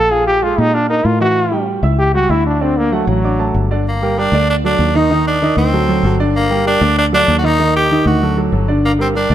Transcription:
Already playing: fingered electric bass A#1, trombone A4
0.11 upright piano F3 F4 F5, trombone G#4
0.27 trombone G4
0.43 upright piano G#3 G#4 G#5, trombone F4
0.58 fingered electric bass A#2, trombone D#4
0.74 trombone D4, upright piano F4 F5 F6
0.90 upright piano A#3 A#4 A#5, trombone D#4
1.05 fingered electric bass A2, trombone F4
1.20 upright piano E3 E4 E5, trombone F#4
1.52 upright piano G3 G4 G5
1.83 fingered electric bass C#2, upright piano E4 E5 E6
1.99 trombone G4
2.14 upright piano G3 G4 G5, trombone F#4
2.29 fingered electric bass D2, upright piano E4 E5 E6, trombone E4
2.47 trombone D4
2.61 upright piano D3 D4 D5, trombone C4
2.77 trombone A#3
2.92 upright piano F#3 F#4 F#5, trombone A3
3.07 fingered electric bass A1, trombone F#3
3.24 upright piano D4 D5 D6
3.39 upright piano A3 A4 A5
3.54 fingered electric bass G1
3.71 upright piano D3 D4 D5
3.88 tenor saxophone A#3
4.02 upright piano G3 G4 A#4
4.18 upright piano G3 G4 A#4, tenor saxophone D4
4.32 fingered electric bass D2, upright piano D3 D4 D5
4.50 tenor saxophone D4
4.64 upright piano F#3 F#4 A4, tenor saxophone D4
4.79 fingered electric bass D#2
4.95 upright piano D#3 D#4 D#5, tenor saxophone D#4
5.10 upright piano D#3 D#4 D#5
5.27 tenor saxophone D4
5.42 upright piano D#3 D#4 D#5
5.57 fingered electric bass D2, tenor saxophone C4
5.73 upright piano F#3 F#4 A4
5.88 upright piano F#3 F#4 A4
6.03 fingered electric bass G1, upright piano F#3 F#4 A4
6.20 upright piano D3 D4 D5
6.36 tenor saxophone A#3
6.50 upright piano G3 G4 A#4
6.66 upright piano G3 G4 A#4, tenor saxophone D4
6.81 fingered electric bass D2, upright piano D3 D4 D5
6.98 tenor saxophone D4
7.12 upright piano F#3 F#4 A4, tenor saxophone D4
7.28 fingered electric bass D#2
7.39 tenor saxophone F#4
7.43 upright piano D#3 D#4 D#5, tenor saxophone D#4
7.59 upright piano D#3 D#4 D#5
7.76 tenor saxophone G4
7.91 upright piano D#3 D#4 D#5
8.06 fingered electric bass D2, tenor saxophone F#4
8.22 upright piano F#3 F#4 A4
8.37 upright piano F#3 F#4 A4
8.52 fingered electric bass G1, upright piano F#3 F#4 A4
8.68 upright piano D3 D4 D5
8.85 tenor saxophone A#3
8.99 upright piano G3 G4 A#4, tenor saxophone C4
9.15 upright piano G3 G4 A#4, tenor saxophone D4
9.30 fingered electric bass D2, upright piano D3 D4 D5

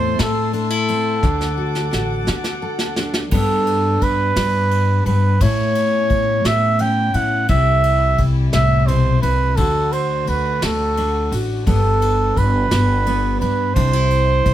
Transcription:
Already playing: upright bass E2, steel-string acoustic guitar A2 A3 C4 E4 A4, string section A4 E5 C6, flugelhorn C5
0.19 upright bass A2, flugelhorn A4, muted steel-string acoustic guitar stroke, snare, ride
0.53 steel-string acoustic guitar D4, flugelhorn A4, ride
0.70 steel-string acoustic guitar E4
0.88 steel-string acoustic guitar C4, ride
1.23 upright bass D2, steel-string acoustic guitar D3 D4, string section F#5 D6, kick, snare
1.41 snare
1.57 steel-string acoustic guitar F#4
1.75 snare
1.91 upright bass A1, steel-string acoustic guitar F#4, snare
2.27 upright bass D3, muted steel-string acoustic guitar stroke, snare
2.44 snare
2.62 steel-string acoustic guitar A4
2.79 snare
2.96 steel-string acoustic guitar D4, snare
3.14 snare
3.31 steel-string acoustic guitar G2 G3 B3 D4, upright bass G2, string section G3 D4 B4, flugelhorn A4, kick, crash
3.67 ride
4.01 upright bass G2, flugelhorn B4, kick, ride
4.36 upright bass G2, snare, ride
4.71 ride
5.06 upright bass G2, steel-string acoustic guitar G2, flugelhorn B4, ride
5.41 upright bass A2, steel-string acoustic guitar A2 E4, string section A3 B3 C#4, flugelhorn C#5, kick, ride
5.75 ride
6.10 upright bass A2, kick, ride
6.44 upright bass A2, flugelhorn E5, muted steel-string acoustic guitar stroke, snare, ride
6.79 steel-string acoustic guitar C#4, flugelhorn G5, ride
7.14 upright bass A2, steel-string acoustic guitar E4, flugelhorn F#5, ride
7.48 upright bass C2, steel-string acoustic guitar C3 E4, string section E3 G3 E4, flugelhorn E5, kick, ride
7.83 ride
8.18 upright bass C2, kick, ride
8.52 upright bass C2, steel-string acoustic guitar A2, flugelhorn E5, snare, ride
8.86 steel-string acoustic guitar B2, flugelhorn C5, ride
9.22 upright bass C2, steel-string acoustic guitar C3, flugelhorn B4, ride
9.56 upright bass D2, steel-string acoustic guitar D3 F#4, string section D3 A3 F#4, flugelhorn A4, kick, ride
9.92 flugelhorn C5, ride
10.27 upright bass D2, flugelhorn B4, ride
10.62 upright bass D2, flugelhorn A4, muted steel-string acoustic guitar stroke, snare, ride
10.97 steel-string acoustic guitar D4, ride
11.31 upright bass A1, steel-string acoustic guitar F#4, ride
11.66 upright bass G1, steel-string acoustic guitar G2 G3 B3 D4, string section G3 D4 B4, flugelhorn A4, kick, ride
12.02 ride
12.37 upright bass G1, flugelhorn B4, kick, ride
12.70 upright bass G1, muted steel-string acoustic guitar stroke, snare, ride
13.06 steel-string acoustic guitar B3, ride
13.40 upright bass G2, steel-string acoustic guitar D4, flugelhorn B4, ride
13.74 upright bass C2, string section C3 E4, steel-string acoustic guitar C3 D4, flugelhorn C5, kick, ride
13.93 steel-string acoustic guitar E4
14.10 ride
14.46 upright bass C2, kick, ride

